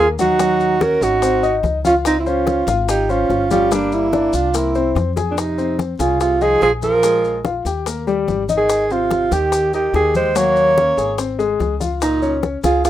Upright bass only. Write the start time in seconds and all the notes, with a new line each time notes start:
Already playing: D#2
1.01 G#1
1.63 C#2
2.67 G#1
3.30 G1
4.33 C2
4.95 F2
5.99 C2
6.62 A#1
7.65 D#2
8.28 G#1
9.31 D#2
9.94 D#2
10.97 G#1
11.60 C#2
12.64 C#2